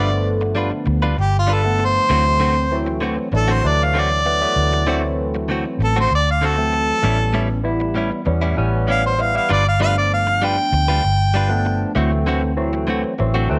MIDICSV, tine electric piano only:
0, 0, Header, 1, 2, 480
1, 0, Start_track
1, 0, Tempo, 616016
1, 1639, Time_signature, 4, 2, 24, 8
1, 10591, End_track
2, 0, Start_track
2, 0, Title_t, "Tine electric piano"
2, 0, Program_c, 0, 4
2, 0, Note_on_c, 0, 50, 83
2, 0, Note_on_c, 0, 53, 71
2, 0, Note_on_c, 0, 57, 77
2, 0, Note_on_c, 0, 59, 89
2, 829, Note_off_c, 0, 50, 0
2, 831, Note_off_c, 0, 53, 0
2, 833, Note_off_c, 0, 57, 0
2, 833, Note_off_c, 0, 59, 0
2, 1279, Note_on_c, 0, 50, 77
2, 1280, Note_on_c, 0, 53, 67
2, 1281, Note_on_c, 0, 57, 74
2, 1282, Note_on_c, 0, 59, 84
2, 1604, Note_off_c, 0, 50, 0
2, 1605, Note_off_c, 0, 53, 0
2, 1606, Note_off_c, 0, 57, 0
2, 1606, Note_off_c, 0, 59, 0
2, 1633, Note_on_c, 0, 54, 74
2, 1634, Note_on_c, 0, 52, 75
2, 1636, Note_on_c, 0, 57, 71
2, 1641, Note_on_c, 0, 60, 87
2, 2073, Note_off_c, 0, 52, 0
2, 2073, Note_off_c, 0, 54, 0
2, 2074, Note_off_c, 0, 57, 0
2, 2077, Note_off_c, 0, 60, 0
2, 2111, Note_on_c, 0, 52, 88
2, 2114, Note_on_c, 0, 54, 82
2, 2118, Note_on_c, 0, 57, 79
2, 2118, Note_on_c, 0, 60, 90
2, 2552, Note_off_c, 0, 52, 0
2, 2553, Note_off_c, 0, 54, 0
2, 2555, Note_off_c, 0, 57, 0
2, 2555, Note_off_c, 0, 60, 0
2, 2591, Note_on_c, 0, 52, 71
2, 2594, Note_on_c, 0, 54, 66
2, 2595, Note_on_c, 0, 57, 67
2, 2598, Note_on_c, 0, 62, 81
2, 2813, Note_off_c, 0, 52, 0
2, 2815, Note_off_c, 0, 54, 0
2, 2815, Note_off_c, 0, 57, 0
2, 2817, Note_off_c, 0, 62, 0
2, 2831, Note_on_c, 0, 52, 79
2, 2835, Note_on_c, 0, 54, 74
2, 2840, Note_on_c, 0, 57, 71
2, 2840, Note_on_c, 0, 62, 82
2, 3272, Note_off_c, 0, 52, 0
2, 3273, Note_off_c, 0, 54, 0
2, 3276, Note_off_c, 0, 57, 0
2, 3276, Note_off_c, 0, 62, 0
2, 3313, Note_on_c, 0, 52, 80
2, 3316, Note_on_c, 0, 57, 68
2, 3317, Note_on_c, 0, 54, 72
2, 3319, Note_on_c, 0, 59, 87
2, 3427, Note_off_c, 0, 52, 0
2, 3428, Note_off_c, 0, 54, 0
2, 3428, Note_off_c, 0, 57, 0
2, 3429, Note_off_c, 0, 59, 0
2, 3436, Note_on_c, 0, 52, 80
2, 3437, Note_on_c, 0, 54, 67
2, 3437, Note_on_c, 0, 57, 73
2, 3438, Note_on_c, 0, 59, 89
2, 3763, Note_off_c, 0, 52, 0
2, 3763, Note_off_c, 0, 54, 0
2, 3764, Note_off_c, 0, 57, 0
2, 3764, Note_off_c, 0, 59, 0
2, 3787, Note_on_c, 0, 52, 80
2, 3790, Note_on_c, 0, 57, 76
2, 3791, Note_on_c, 0, 54, 69
2, 3791, Note_on_c, 0, 60, 90
2, 4666, Note_off_c, 0, 52, 0
2, 4668, Note_off_c, 0, 54, 0
2, 4668, Note_off_c, 0, 57, 0
2, 4668, Note_off_c, 0, 60, 0
2, 5119, Note_on_c, 0, 52, 74
2, 5123, Note_on_c, 0, 54, 71
2, 5125, Note_on_c, 0, 57, 70
2, 5127, Note_on_c, 0, 60, 89
2, 5444, Note_off_c, 0, 52, 0
2, 5446, Note_off_c, 0, 54, 0
2, 5447, Note_off_c, 0, 57, 0
2, 5448, Note_off_c, 0, 60, 0
2, 5468, Note_on_c, 0, 52, 77
2, 5470, Note_on_c, 0, 55, 66
2, 5473, Note_on_c, 0, 59, 68
2, 5480, Note_on_c, 0, 61, 86
2, 5910, Note_off_c, 0, 52, 0
2, 5911, Note_off_c, 0, 55, 0
2, 5912, Note_off_c, 0, 59, 0
2, 5916, Note_off_c, 0, 61, 0
2, 5949, Note_on_c, 0, 52, 88
2, 5950, Note_on_c, 0, 55, 77
2, 5955, Note_on_c, 0, 59, 76
2, 5958, Note_on_c, 0, 64, 98
2, 6390, Note_off_c, 0, 52, 0
2, 6391, Note_off_c, 0, 55, 0
2, 6393, Note_off_c, 0, 59, 0
2, 6395, Note_off_c, 0, 64, 0
2, 6434, Note_on_c, 0, 52, 89
2, 6438, Note_on_c, 0, 55, 83
2, 6439, Note_on_c, 0, 59, 78
2, 6445, Note_on_c, 0, 61, 97
2, 6655, Note_off_c, 0, 52, 0
2, 6657, Note_off_c, 0, 55, 0
2, 6657, Note_off_c, 0, 59, 0
2, 6660, Note_off_c, 0, 61, 0
2, 6678, Note_on_c, 0, 52, 96
2, 6680, Note_on_c, 0, 55, 84
2, 6682, Note_on_c, 0, 59, 88
2, 6685, Note_on_c, 0, 61, 107
2, 7115, Note_off_c, 0, 52, 0
2, 7116, Note_off_c, 0, 55, 0
2, 7117, Note_off_c, 0, 59, 0
2, 7119, Note_off_c, 0, 61, 0
2, 7154, Note_on_c, 0, 52, 77
2, 7158, Note_on_c, 0, 55, 72
2, 7163, Note_on_c, 0, 59, 76
2, 7166, Note_on_c, 0, 64, 86
2, 7269, Note_off_c, 0, 52, 0
2, 7271, Note_off_c, 0, 55, 0
2, 7273, Note_off_c, 0, 59, 0
2, 7275, Note_off_c, 0, 64, 0
2, 7279, Note_on_c, 0, 52, 79
2, 7283, Note_on_c, 0, 55, 69
2, 7285, Note_on_c, 0, 59, 71
2, 7287, Note_on_c, 0, 64, 86
2, 7397, Note_off_c, 0, 52, 0
2, 7399, Note_off_c, 0, 55, 0
2, 7400, Note_off_c, 0, 59, 0
2, 7401, Note_off_c, 0, 64, 0
2, 7632, Note_on_c, 0, 53, 69
2, 7637, Note_on_c, 0, 57, 62
2, 7640, Note_on_c, 0, 59, 59
2, 7640, Note_on_c, 0, 62, 76
2, 8509, Note_off_c, 0, 53, 0
2, 8511, Note_off_c, 0, 57, 0
2, 8513, Note_off_c, 0, 59, 0
2, 8513, Note_off_c, 0, 62, 0
2, 8950, Note_on_c, 0, 53, 93
2, 8953, Note_on_c, 0, 59, 82
2, 8955, Note_on_c, 0, 57, 80
2, 8955, Note_on_c, 0, 62, 103
2, 9280, Note_off_c, 0, 53, 0
2, 9281, Note_off_c, 0, 59, 0
2, 9282, Note_off_c, 0, 57, 0
2, 9282, Note_off_c, 0, 62, 0
2, 9311, Note_on_c, 0, 54, 80
2, 9312, Note_on_c, 0, 52, 95
2, 9315, Note_on_c, 0, 57, 85
2, 9318, Note_on_c, 0, 60, 104
2, 9752, Note_off_c, 0, 52, 0
2, 9752, Note_off_c, 0, 54, 0
2, 9754, Note_off_c, 0, 57, 0
2, 9755, Note_off_c, 0, 60, 0
2, 9788, Note_on_c, 0, 52, 89
2, 9792, Note_on_c, 0, 54, 84
2, 9792, Note_on_c, 0, 57, 80
2, 9796, Note_on_c, 0, 60, 100
2, 10231, Note_off_c, 0, 52, 0
2, 10232, Note_off_c, 0, 57, 0
2, 10233, Note_off_c, 0, 54, 0
2, 10235, Note_off_c, 0, 60, 0
2, 10275, Note_on_c, 0, 52, 92
2, 10278, Note_on_c, 0, 54, 78
2, 10283, Note_on_c, 0, 57, 82
2, 10284, Note_on_c, 0, 60, 101
2, 10496, Note_off_c, 0, 52, 0
2, 10497, Note_off_c, 0, 54, 0
2, 10500, Note_off_c, 0, 57, 0
2, 10500, Note_off_c, 0, 60, 0
2, 10516, Note_on_c, 0, 54, 88
2, 10517, Note_on_c, 0, 52, 102
2, 10522, Note_on_c, 0, 57, 92
2, 10524, Note_on_c, 0, 60, 109
2, 10591, Note_off_c, 0, 52, 0
2, 10591, Note_off_c, 0, 54, 0
2, 10591, Note_off_c, 0, 57, 0
2, 10591, Note_off_c, 0, 60, 0
2, 10591, End_track
0, 0, End_of_file